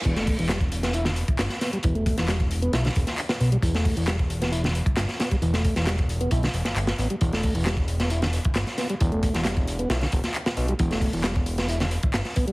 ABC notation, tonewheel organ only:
X:1
M:4/4
L:1/16
Q:1/4=134
K:Em
V:1 name="Tonewheel organ" clef=bass
E, A,2 E, G, z2 B, E D, z4 B, G, | E, A,2 E, G, z2 B, E D, z4 B, G, | E, A,2 E, G, z2 B, E D, z4 B, G, | E, A,2 E, G, z2 B, E D, z4 B, G, |
E, A,2 E, G, z2 B, E D, z4 B, G, | E, A,2 E, G, z2 B, E D, z4 B, G, | E, A,2 E, G, z2 B, E D, z4 B, G, |]